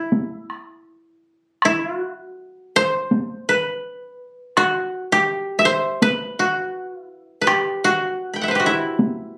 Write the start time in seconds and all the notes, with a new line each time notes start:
Already playing: E4 F#4
0.12 taiko high
0.50 taiko rim
1.62 E4, taiko rim
1.84 F4
1.96 F#4
2.76 C5
3.11 taiko high
3.49 B4
4.57 F#4, taiko rim
5.12 G4
5.59 E5
5.65 C5
6.02 B4, taiko high
6.39 F#4
6.90 F4
7.02 E4
7.41 B4
7.47 G4, taiko rim
7.84 F#4
8.34 G5 B5
8.41 E5 F#5
8.48 B4 C5
8.55 G4
8.60 F#4
8.66 E4
8.99 taiko high